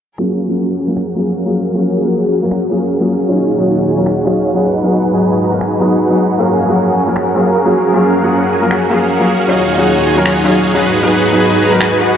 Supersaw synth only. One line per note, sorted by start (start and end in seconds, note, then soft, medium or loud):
0.19 0.47 C#4 medium
0.19 0.47 F#4 medium
0.19 0.47 G#4 medium
0.19 0.47 A#4 medium
0.19 0.47 F5 loud
0.49 0.75 C#4 medium
0.49 0.75 F#4 medium
0.49 0.75 G#4 medium
0.49 0.75 A#4 medium
0.49 0.75 F#5 medium
0.77 0.89 C#4 medium
0.77 0.88 F#4 medium
0.77 0.89 G#4 medium
0.77 0.88 A#4 medium
0.77 0.89 G#5 medium
0.97 1.14 C#4 medium
0.97 1.14 F#4 medium
0.97 1.14 G#4 medium
0.97 1.14 A#4 medium
0.97 1.14 F#5 medium
1.16 1.44 C#4 medium
1.16 1.44 F#4 medium
1.16 1.44 G#4 medium
1.16 1.44 A#4 medium
1.16 1.44 F5 medium
1.46 1.72 C#4 medium
1.46 1.72 F#4 medium
1.46 1.72 G#4 medium
1.46 1.72 A#4 medium
1.46 1.72 F5 medium
1.74 2.02 C#4 medium
1.74 2.02 F#4 medium
1.74 2.02 G#4 medium
1.74 2.02 A#4 medium
1.74 2.02 F5 loud
2.04 2.30 C#4 medium
2.04 2.30 F#4 medium
2.04 2.30 G#4 medium
2.04 2.30 A#4 medium
2.04 2.30 F#5 medium
2.32 2.43 C#4 medium
2.32 2.43 F#4 medium
2.32 2.43 G#4 medium
2.32 2.43 A#4 medium
2.32 2.43 G#5 medium
2.52 2.69 C#4 medium
2.52 2.69 F#4 medium
2.52 2.69 G#4 medium
2.52 2.69 A#4 medium
2.52 2.69 F#5 medium
2.71 2.98 C#4 medium
2.71 2.98 F#4 medium
2.71 2.98 G#4 medium
2.71 2.98 A#4 medium
2.71 2.98 F5 medium
3.01 3.27 C#4 medium
3.01 3.27 F#4 medium
3.01 3.27 G#4 medium
3.01 3.27 A#4 medium
3.01 3.27 F5 loud
3.29 3.56 D#4 medium
3.29 3.56 F#4 medium
3.29 3.56 G#4 medium
3.29 3.56 C#5 medium
3.29 3.56 F5 medium
3.59 3.85 D#4 medium
3.59 3.85 F#4 medium
3.59 3.85 G#4 medium
3.59 3.85 C#5 medium
3.59 3.85 F#5 medium
3.87 3.98 D#4 medium
3.87 3.98 F#4 medium
3.87 3.98 G#4 medium
3.87 3.98 C#5 medium
3.87 3.98 G#5 loud
4.06 4.24 D#4 medium
4.06 4.24 F#4 medium
4.06 4.24 G#4 medium
4.06 4.24 C#5 medium
4.06 4.24 F#5 medium
4.26 4.53 D#4 medium
4.26 4.53 F#4 medium
4.26 4.53 G#4 medium
4.26 4.53 C#5 medium
4.26 4.53 F5 medium
4.56 4.82 D#4 medium
4.56 4.82 F#4 medium
4.56 4.82 G#4 medium
4.56 4.82 B4 medium
4.56 4.82 F#5 medium
4.84 5.11 D#4 medium
4.84 5.11 F#4 medium
4.84 5.11 G#4 medium
4.84 5.11 B4 medium
4.84 5.11 F#5 loud
5.14 5.40 D#4 medium
5.14 5.40 F#4 medium
5.14 5.40 G#4 medium
5.14 5.40 B4 medium
5.14 5.40 G#5 medium
5.42 5.53 D#4 medium
5.42 5.53 F#4 medium
5.42 5.53 G#4 medium
5.42 5.53 B4 medium
5.42 5.53 A#5 loud
5.61 5.78 D#4 medium
5.61 5.78 F#4 medium
5.61 5.78 G#4 medium
5.61 5.78 B4 medium
5.61 5.78 G#5 medium
5.80 6.08 D#4 medium
5.80 6.08 F#4 medium
5.80 6.08 G#4 medium
5.80 6.08 B4 medium
5.80 6.08 F#5 medium
6.11 6.36 D#4 medium
6.11 6.36 F#4 medium
6.11 6.36 G#4 medium
6.11 6.36 B4 medium
6.11 6.36 F#5 medium
6.39 6.66 C#4 medium
6.39 6.66 F#4 medium
6.39 6.66 G#4 medium
6.39 6.66 A#4 medium
6.39 6.66 F5 loud
6.69 6.95 C#4 medium
6.69 6.95 F#4 medium
6.69 6.95 G#4 medium
6.69 6.95 A#4 medium
6.69 6.95 F#5 medium
6.97 7.08 C#4 medium
6.97 7.08 F#4 medium
6.97 7.08 G#4 medium
6.97 7.08 A#4 medium
6.97 7.08 G#5 loud
7.16 7.33 C#4 medium
7.16 7.33 F#4 medium
7.16 7.33 G#4 medium
7.16 7.33 A#4 medium
7.16 7.33 F#5 medium
7.36 7.63 C#4 medium
7.36 7.63 F#4 medium
7.36 7.63 G#4 medium
7.36 7.63 A#4 medium
7.36 7.63 F5 medium
7.65 7.91 C#4 medium
7.65 7.91 F#4 medium
7.65 7.91 G#4 medium
7.65 7.91 A#4 medium
7.65 7.91 F5 medium
7.94 8.21 C#4 medium
7.94 8.21 F#4 medium
7.94 8.21 G#4 medium
7.94 8.21 A#4 medium
7.94 8.21 F5 loud
8.24 8.49 C#4 medium
8.24 8.49 F#4 medium
8.24 8.49 G#4 medium
8.24 8.49 A#4 medium
8.24 8.49 F#5 loud
8.52 8.63 C#4 medium
8.52 8.63 F#4 medium
8.52 8.63 G#4 medium
8.52 8.63 A#4 medium
8.52 8.63 G#5 loud
8.71 8.88 C#4 medium
8.71 8.88 F#4 medium
8.71 8.88 G#4 medium
8.71 8.88 A#4 medium
8.71 8.88 F#5 medium
8.90 9.18 C#4 medium
8.90 9.18 F#4 medium
8.90 9.18 G#4 medium
8.90 9.18 A#4 medium
8.90 9.18 F5 medium
9.20 9.46 C#4 medium
9.20 9.46 F#4 medium
9.20 9.46 G#4 medium
9.20 9.46 A#4 medium
9.20 9.46 F5 medium
9.48 9.76 D#4 medium
9.48 9.76 F#4 medium
9.48 9.76 G#4 medium
9.48 9.76 C#5 medium
9.48 9.76 F5 loud
9.78 10.04 D#4 medium
9.78 10.04 F#4 medium
9.78 10.04 G#4 medium
9.78 10.04 C#5 medium
9.78 10.04 F#5 loud
10.06 10.18 D#4 medium
10.06 10.18 F#4 medium
10.06 10.18 G#4 medium
10.06 10.18 C#5 medium
10.06 10.18 G#5 loud
10.26 10.43 D#4 medium
10.26 10.43 F#4 medium
10.26 10.43 G#4 medium
10.26 10.43 C#5 medium
10.26 10.43 F#5 medium
10.45 10.72 D#4 medium
10.45 10.72 F#4 medium
10.45 10.72 G#4 medium
10.45 10.73 C#5 medium
10.45 10.72 F5 medium
10.75 11.01 D#4 medium
10.75 11.01 F#4 medium
10.75 11.01 G#4 medium
10.75 11.01 B4 medium
10.75 11.01 F#5 loud
11.03 11.30 D#4 medium
11.03 11.30 F#4 medium
11.03 11.31 G#4 medium
11.03 11.31 B4 medium
11.03 11.30 F#5 loud
11.33 11.59 D#4 medium
11.33 11.59 F#4 medium
11.33 11.59 G#4 medium
11.33 11.59 B4 medium
11.33 11.59 G#5 medium
11.61 11.72 D#4 medium
11.61 11.72 F#4 medium
11.61 11.72 G#4 medium
11.61 11.72 B4 medium
11.61 11.72 A#5 loud
11.80 11.98 D#4 medium
11.80 11.98 F#4 medium
11.80 11.98 G#4 medium
11.80 11.98 B4 medium
11.80 11.98 G#5 medium
12.00 12.17 D#4 medium
12.00 12.17 F#4 medium
12.00 12.17 G#4 medium
12.00 12.17 B4 medium
12.00 12.17 F#5 medium